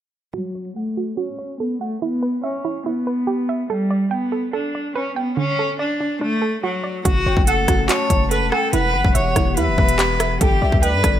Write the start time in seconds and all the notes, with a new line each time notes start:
0.34 F#3 F#4
0.55 C#5
0.76 A3 F#5
0.97 F#4
1.17 C#4 F#4
1.39 C#5
1.60 B3 A4
1.81 A3 F#5
2.02 B3 E4
2.23 B4
2.44 C#4 E5
2.65 E4
2.86 B3 E4
3.07 B4
3.27 G4
3.49 E5
3.70 G3 A4
3.91 D5
4.11 B3 G5
4.32 A4
4.53 D4 A4
4.75 D5
4.95 C#4 B4
5.16 B3 G5
5.37 D3 C#4
5.59 A4
5.79 D4 D5
6.00 D4
6.21 A3 D4
6.42 A4
6.63 F#3 F#4
6.84 D5
7.05 F#1 A3 C#4 F#4 F#5, kick, closed hi-hat
7.26 F#1 C#5 G5
7.37 F#1, kick
7.47 A4 F#5, closed hi-hat
7.68 F#1 F#4, kick, cross-stick, closed hi-hat
7.89 F#4 C#5 A5, clap, closed hi-hat
8.10 F#1 C#5, kick, closed hi-hat
8.31 A4 B4, closed hi-hat
8.42 E1
8.52 A4 F#5 G5, cross-stick
8.73 E1 E3 B3 E4 G4 B4 F#5, closed hi-hat
8.94 G1 B4
9.04 E1, kick
9.15 E1 C#5 E5, closed hi-hat
9.36 E1 E4, kick, cross-stick, closed hi-hat
9.57 E2 E4 B4 E5, closed hi-hat
9.68 E1
9.78 E1 B4, kick
9.89 closed hi-hat
9.98 G4, clap, closed hi-hat
10.20 E5, cross-stick, closed hi-hat
10.41 G1 G3 D4 G4 A4 B4, kick, closed hi-hat
10.62 B1 D5 E5
10.72 D2, kick
10.82 B4 D5 G5, closed hi-hat
10.93 G2
11.03 G1 A4, kick, cross-stick, closed hi-hat